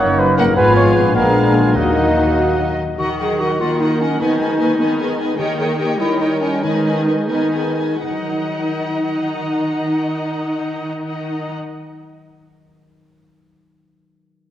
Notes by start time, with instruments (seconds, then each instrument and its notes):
Already playing: harp F#2 F#3 A#3 D#4 A#4, bassoon A#3, french horn section A#3 D#4, clarinet D#4, cor anglais F#5
0.00 double bass section F#1, cello section F#2, trumpet C#5, flute section C#6
0.19 trumpet B4, flute section B5
0.38 harp G#2, viola section A#3, violin section D#4 F#5, trumpet A#4, flute section A#5
0.44 harp F3
0.48 harp F4
0.53 double bass section G#1, harp B4
0.57 cello section G#2, viola section G#3, bassoon B3, french horn section B3 F4, clarinet F4, violin section F4 F5, trumpet B4, cor anglais G#5, flute section B5
0.76 trumpet C#5, flute section C#6
0.95 harp A#2, trumpet B4, flute section B5
1.02 harp G#3
1.06 harp D4
1.11 violin section D4, trumpet A#4, harp B4
1.15 double bass section A#1, cello section A#2, viola section G#3, bassoon B3, french horn section B3 G#4, clarinet D4, violin section F5, cor anglais G#5, flute section A#5
1.55 harp D#3, trumpet F4, flute section F5
1.62 harp F#3
1.67 harp D#4
1.71 violin section D#4 D#5, harp A#4
1.75 double bass section D#2, cello section D#3, viola section F#3, bassoon A#3, french horn section A#3 F#4, trumpet D#4, clarinet D#4, flute section D#5, cor anglais F#5
2.98 harp D#3, viola section D#3, clarinet F#4, violin section A#4 D#5 F#5
3.19 harp F#3, clarinet G#4, violin section A#4 D#5 F#5
3.39 harp D#4, clarinet F#4, violin section A#4 D#5 F#5
3.59 viola section D#3, cello section A#3, clarinet F4, harp A#4, violin section A#4 D#5 F#5
3.80 clarinet D#4, harp F#4, violin section A#4 D#5 F#5
4.01 clarinet C#4, harp A#4, violin section A#4 D#5 F#5
4.20 viola section D#3, harp D#3, cello section B3, clarinet D#4, violin section B4 D#5 G#5
4.39 cello section G#3, harp G#3, violin section B4 D#5 G#5
4.58 cello section A#3, harp D#4, violin section B4 D#5 G#5
4.79 viola section D#3, cello section B3, harp B4, violin section B4 D#5 G#5
4.98 harp G#4, violin section B4 D#5 G#5
5.18 harp B4, violin section B4 D#5 G#5
5.38 viola section D#3, harp D#3, cello section A#3, clarinet G4, violin section C#5 D#5 G5
5.58 harp A#3, clarinet G#4, violin section C#5 D#5 G5
5.79 harp D#4, clarinet G4, violin section C#5 D#5 G5
5.99 viola section D#3, cello section G3, clarinet E4, harp C#5, violin section C#5 D#5 G5
6.19 clarinet D#4, harp A#4, violin section C#5 D#5 G5
6.41 clarinet C#4, harp C#5, violin section C#5 D#5 G5
6.62 harp D#3, viola section D#3, cello section G#3, clarinet D#4, violin section B4 D#5 G#5
6.85 harp G#3, violin section B4 D#5 G#5
7.07 harp D#4, violin section B4 D#5 G#5
7.28 viola section D#3, cello section B3, violin section B4 D#5 G#5, harp B4
7.52 harp G#4, violin section B4 D#5 G#5
7.77 harp B4, violin section B4 D#5 G#5
8.01 cello section D#3, harp D#3, clarinet D#4, viola section D#4, violin section D#5 F#5
8.09 harp F#3
8.16 harp D#4
8.23 harp A#4
8.30 harp D#5